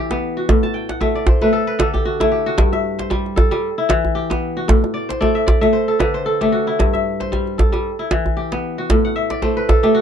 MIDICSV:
0, 0, Header, 1, 3, 480
1, 0, Start_track
1, 0, Tempo, 525394
1, 449, Time_signature, 4, 2, 24, 8
1, 9149, End_track
2, 0, Start_track
2, 0, Title_t, "Kora"
2, 0, Program_c, 0, 46
2, 0, Note_on_c, 0, 52, 77
2, 0, Note_on_c, 0, 64, 64
2, 0, Note_on_c, 0, 67, 71
2, 0, Note_on_c, 0, 69, 67
2, 99, Note_on_c, 0, 59, 78
2, 337, Note_on_c, 0, 66, 64
2, 391, Note_off_c, 0, 67, 0
2, 446, Note_on_c, 0, 45, 81
2, 456, Note_off_c, 0, 69, 0
2, 494, Note_off_c, 0, 52, 0
2, 576, Note_on_c, 0, 81, 70
2, 675, Note_on_c, 0, 79, 66
2, 730, Note_off_c, 0, 66, 0
2, 814, Note_on_c, 0, 78, 65
2, 919, Note_on_c, 0, 57, 71
2, 920, Note_on_c, 0, 76, 68
2, 1055, Note_on_c, 0, 74, 72
2, 1060, Note_off_c, 0, 64, 0
2, 1158, Note_on_c, 0, 72, 66
2, 1213, Note_off_c, 0, 59, 0
2, 1292, Note_off_c, 0, 57, 0
2, 1295, Note_on_c, 0, 71, 69
2, 1296, Note_on_c, 0, 57, 75
2, 1370, Note_off_c, 0, 81, 0
2, 1395, Note_on_c, 0, 69, 77
2, 1449, Note_off_c, 0, 45, 0
2, 1524, Note_off_c, 0, 71, 0
2, 1527, Note_off_c, 0, 79, 0
2, 1528, Note_on_c, 0, 71, 72
2, 1583, Note_off_c, 0, 72, 0
2, 1629, Note_off_c, 0, 69, 0
2, 1633, Note_on_c, 0, 69, 72
2, 1634, Note_on_c, 0, 50, 80
2, 1695, Note_off_c, 0, 78, 0
2, 1768, Note_on_c, 0, 67, 68
2, 1864, Note_off_c, 0, 76, 0
2, 1876, Note_on_c, 0, 66, 68
2, 2008, Note_off_c, 0, 57, 0
2, 2011, Note_on_c, 0, 64, 70
2, 2012, Note_on_c, 0, 57, 76
2, 2067, Note_off_c, 0, 74, 0
2, 2112, Note_off_c, 0, 67, 0
2, 2115, Note_on_c, 0, 67, 63
2, 2170, Note_off_c, 0, 66, 0
2, 2251, Note_on_c, 0, 66, 72
2, 2354, Note_on_c, 0, 43, 91
2, 2406, Note_off_c, 0, 50, 0
2, 2490, Note_on_c, 0, 76, 63
2, 2651, Note_off_c, 0, 71, 0
2, 2729, Note_on_c, 0, 72, 65
2, 2833, Note_on_c, 0, 55, 84
2, 2837, Note_off_c, 0, 69, 0
2, 2888, Note_off_c, 0, 66, 0
2, 3072, Note_on_c, 0, 69, 66
2, 3199, Note_off_c, 0, 55, 0
2, 3209, Note_on_c, 0, 55, 79
2, 3364, Note_off_c, 0, 43, 0
2, 3364, Note_off_c, 0, 55, 0
2, 3406, Note_off_c, 0, 67, 0
2, 3434, Note_off_c, 0, 76, 0
2, 3443, Note_off_c, 0, 64, 0
2, 3453, Note_on_c, 0, 64, 66
2, 3553, Note_on_c, 0, 52, 87
2, 3791, Note_on_c, 0, 67, 70
2, 3814, Note_off_c, 0, 72, 0
2, 3836, Note_off_c, 0, 57, 0
2, 3928, Note_on_c, 0, 59, 72
2, 4173, Note_on_c, 0, 66, 64
2, 4227, Note_off_c, 0, 67, 0
2, 4276, Note_off_c, 0, 69, 0
2, 4277, Note_on_c, 0, 45, 81
2, 4323, Note_off_c, 0, 52, 0
2, 4511, Note_on_c, 0, 74, 72
2, 4650, Note_on_c, 0, 72, 65
2, 4704, Note_off_c, 0, 59, 0
2, 4753, Note_off_c, 0, 74, 0
2, 4756, Note_on_c, 0, 57, 77
2, 4757, Note_on_c, 0, 74, 69
2, 4884, Note_off_c, 0, 64, 0
2, 4887, Note_on_c, 0, 76, 73
2, 4989, Note_off_c, 0, 74, 0
2, 4993, Note_on_c, 0, 74, 64
2, 5125, Note_off_c, 0, 57, 0
2, 5125, Note_off_c, 0, 76, 0
2, 5129, Note_on_c, 0, 57, 72
2, 5129, Note_on_c, 0, 76, 66
2, 5230, Note_off_c, 0, 72, 0
2, 5233, Note_on_c, 0, 72, 71
2, 5284, Note_off_c, 0, 45, 0
2, 5372, Note_on_c, 0, 69, 74
2, 5475, Note_on_c, 0, 71, 71
2, 5478, Note_on_c, 0, 50, 80
2, 5508, Note_off_c, 0, 66, 0
2, 5530, Note_off_c, 0, 72, 0
2, 5611, Note_on_c, 0, 72, 68
2, 5713, Note_off_c, 0, 69, 0
2, 5717, Note_on_c, 0, 69, 74
2, 5852, Note_off_c, 0, 57, 0
2, 5855, Note_on_c, 0, 67, 66
2, 5856, Note_on_c, 0, 57, 72
2, 5960, Note_on_c, 0, 66, 69
2, 6005, Note_off_c, 0, 74, 0
2, 6074, Note_off_c, 0, 76, 0
2, 6095, Note_on_c, 0, 64, 71
2, 6206, Note_on_c, 0, 43, 86
2, 6246, Note_off_c, 0, 50, 0
2, 6260, Note_off_c, 0, 66, 0
2, 6335, Note_on_c, 0, 76, 63
2, 6576, Note_off_c, 0, 72, 0
2, 6579, Note_on_c, 0, 72, 66
2, 6634, Note_off_c, 0, 71, 0
2, 6687, Note_on_c, 0, 55, 70
2, 6921, Note_off_c, 0, 69, 0
2, 6925, Note_on_c, 0, 69, 60
2, 7046, Note_off_c, 0, 55, 0
2, 7057, Note_on_c, 0, 55, 70
2, 7145, Note_off_c, 0, 67, 0
2, 7209, Note_off_c, 0, 43, 0
2, 7210, Note_off_c, 0, 55, 0
2, 7279, Note_off_c, 0, 76, 0
2, 7297, Note_off_c, 0, 64, 0
2, 7301, Note_on_c, 0, 64, 68
2, 7408, Note_on_c, 0, 52, 83
2, 7644, Note_on_c, 0, 67, 67
2, 7664, Note_off_c, 0, 72, 0
2, 7680, Note_off_c, 0, 57, 0
2, 7784, Note_on_c, 0, 59, 73
2, 8024, Note_on_c, 0, 66, 62
2, 8078, Note_off_c, 0, 67, 0
2, 8129, Note_off_c, 0, 69, 0
2, 8134, Note_on_c, 0, 45, 84
2, 8174, Note_off_c, 0, 52, 0
2, 8265, Note_on_c, 0, 78, 65
2, 8366, Note_on_c, 0, 76, 69
2, 8502, Note_on_c, 0, 74, 67
2, 8607, Note_on_c, 0, 57, 74
2, 8609, Note_on_c, 0, 72, 67
2, 8664, Note_off_c, 0, 59, 0
2, 8733, Note_off_c, 0, 64, 0
2, 8741, Note_on_c, 0, 71, 70
2, 8851, Note_on_c, 0, 69, 69
2, 8978, Note_off_c, 0, 57, 0
2, 8982, Note_on_c, 0, 57, 77
2, 8984, Note_on_c, 0, 67, 71
2, 9039, Note_off_c, 0, 66, 0
2, 9039, Note_off_c, 0, 78, 0
2, 9086, Note_on_c, 0, 66, 77
2, 9139, Note_off_c, 0, 45, 0
2, 9149, Note_off_c, 0, 57, 0
2, 9149, Note_off_c, 0, 66, 0
2, 9149, Note_off_c, 0, 67, 0
2, 9149, Note_off_c, 0, 69, 0
2, 9149, Note_off_c, 0, 71, 0
2, 9149, Note_off_c, 0, 72, 0
2, 9149, Note_off_c, 0, 74, 0
2, 9149, Note_off_c, 0, 76, 0
2, 9149, End_track
3, 0, Start_track
3, 0, Title_t, "Djembe"
3, 98, Note_on_c, 9, 62, 63
3, 189, Note_off_c, 9, 62, 0
3, 448, Note_on_c, 9, 62, 83
3, 448, Note_on_c, 9, 64, 81
3, 539, Note_off_c, 9, 62, 0
3, 539, Note_off_c, 9, 64, 0
3, 580, Note_on_c, 9, 63, 58
3, 672, Note_off_c, 9, 63, 0
3, 816, Note_on_c, 9, 62, 57
3, 908, Note_off_c, 9, 62, 0
3, 925, Note_on_c, 9, 63, 78
3, 1016, Note_off_c, 9, 63, 0
3, 1053, Note_on_c, 9, 62, 25
3, 1145, Note_off_c, 9, 62, 0
3, 1156, Note_on_c, 9, 62, 76
3, 1156, Note_on_c, 9, 64, 79
3, 1248, Note_off_c, 9, 62, 0
3, 1248, Note_off_c, 9, 64, 0
3, 1293, Note_on_c, 9, 63, 58
3, 1384, Note_off_c, 9, 63, 0
3, 1642, Note_on_c, 9, 62, 74
3, 1642, Note_on_c, 9, 63, 70
3, 1733, Note_off_c, 9, 62, 0
3, 1733, Note_off_c, 9, 63, 0
3, 1777, Note_on_c, 9, 62, 25
3, 1777, Note_on_c, 9, 64, 57
3, 1869, Note_off_c, 9, 62, 0
3, 1869, Note_off_c, 9, 64, 0
3, 2019, Note_on_c, 9, 62, 59
3, 2019, Note_on_c, 9, 63, 56
3, 2111, Note_off_c, 9, 62, 0
3, 2111, Note_off_c, 9, 63, 0
3, 2359, Note_on_c, 9, 62, 71
3, 2359, Note_on_c, 9, 64, 73
3, 2451, Note_off_c, 9, 62, 0
3, 2451, Note_off_c, 9, 64, 0
3, 2495, Note_on_c, 9, 63, 57
3, 2586, Note_off_c, 9, 63, 0
3, 2735, Note_on_c, 9, 62, 56
3, 2826, Note_off_c, 9, 62, 0
3, 2841, Note_on_c, 9, 63, 74
3, 2932, Note_off_c, 9, 63, 0
3, 2979, Note_on_c, 9, 62, 25
3, 3070, Note_off_c, 9, 62, 0
3, 3084, Note_on_c, 9, 62, 72
3, 3084, Note_on_c, 9, 64, 75
3, 3175, Note_off_c, 9, 62, 0
3, 3175, Note_off_c, 9, 64, 0
3, 3217, Note_on_c, 9, 63, 56
3, 3309, Note_off_c, 9, 63, 0
3, 3561, Note_on_c, 9, 62, 78
3, 3561, Note_on_c, 9, 63, 75
3, 3652, Note_off_c, 9, 62, 0
3, 3652, Note_off_c, 9, 63, 0
3, 3697, Note_on_c, 9, 62, 25
3, 3697, Note_on_c, 9, 64, 57
3, 3788, Note_off_c, 9, 62, 0
3, 3788, Note_off_c, 9, 64, 0
3, 3938, Note_on_c, 9, 62, 62
3, 3938, Note_on_c, 9, 63, 59
3, 4029, Note_off_c, 9, 62, 0
3, 4029, Note_off_c, 9, 63, 0
3, 4287, Note_on_c, 9, 62, 81
3, 4287, Note_on_c, 9, 64, 86
3, 4378, Note_off_c, 9, 62, 0
3, 4378, Note_off_c, 9, 64, 0
3, 4421, Note_on_c, 9, 62, 26
3, 4421, Note_on_c, 9, 63, 58
3, 4512, Note_off_c, 9, 62, 0
3, 4512, Note_off_c, 9, 63, 0
3, 4662, Note_on_c, 9, 62, 55
3, 4754, Note_off_c, 9, 62, 0
3, 4770, Note_on_c, 9, 63, 82
3, 4861, Note_off_c, 9, 63, 0
3, 4904, Note_on_c, 9, 62, 25
3, 4996, Note_off_c, 9, 62, 0
3, 5005, Note_on_c, 9, 62, 74
3, 5005, Note_on_c, 9, 64, 73
3, 5097, Note_off_c, 9, 62, 0
3, 5097, Note_off_c, 9, 64, 0
3, 5143, Note_on_c, 9, 63, 59
3, 5235, Note_off_c, 9, 63, 0
3, 5484, Note_on_c, 9, 62, 68
3, 5484, Note_on_c, 9, 63, 63
3, 5575, Note_off_c, 9, 62, 0
3, 5575, Note_off_c, 9, 63, 0
3, 5621, Note_on_c, 9, 62, 22
3, 5713, Note_off_c, 9, 62, 0
3, 5861, Note_on_c, 9, 62, 47
3, 5952, Note_off_c, 9, 62, 0
3, 6211, Note_on_c, 9, 62, 61
3, 6211, Note_on_c, 9, 64, 59
3, 6303, Note_off_c, 9, 62, 0
3, 6303, Note_off_c, 9, 64, 0
3, 6348, Note_on_c, 9, 63, 48
3, 6439, Note_off_c, 9, 63, 0
3, 6584, Note_on_c, 9, 62, 50
3, 6675, Note_off_c, 9, 62, 0
3, 6694, Note_on_c, 9, 63, 65
3, 6786, Note_off_c, 9, 63, 0
3, 6828, Note_on_c, 9, 62, 21
3, 6919, Note_off_c, 9, 62, 0
3, 6937, Note_on_c, 9, 62, 62
3, 6937, Note_on_c, 9, 64, 64
3, 7028, Note_off_c, 9, 62, 0
3, 7028, Note_off_c, 9, 64, 0
3, 7067, Note_on_c, 9, 63, 51
3, 7158, Note_off_c, 9, 63, 0
3, 7410, Note_on_c, 9, 62, 69
3, 7410, Note_on_c, 9, 63, 62
3, 7501, Note_off_c, 9, 62, 0
3, 7501, Note_off_c, 9, 63, 0
3, 7544, Note_on_c, 9, 62, 21
3, 7544, Note_on_c, 9, 64, 54
3, 7635, Note_off_c, 9, 62, 0
3, 7635, Note_off_c, 9, 64, 0
3, 7784, Note_on_c, 9, 62, 51
3, 7875, Note_off_c, 9, 62, 0
3, 8130, Note_on_c, 9, 62, 66
3, 8130, Note_on_c, 9, 64, 65
3, 8221, Note_off_c, 9, 62, 0
3, 8221, Note_off_c, 9, 64, 0
3, 8499, Note_on_c, 9, 62, 49
3, 8590, Note_off_c, 9, 62, 0
3, 8609, Note_on_c, 9, 63, 70
3, 8700, Note_off_c, 9, 63, 0
3, 8746, Note_on_c, 9, 62, 23
3, 8837, Note_off_c, 9, 62, 0
3, 8854, Note_on_c, 9, 62, 70
3, 8854, Note_on_c, 9, 64, 69
3, 8945, Note_off_c, 9, 62, 0
3, 8945, Note_off_c, 9, 64, 0
3, 8989, Note_on_c, 9, 63, 58
3, 9080, Note_off_c, 9, 63, 0
3, 9149, End_track
0, 0, End_of_file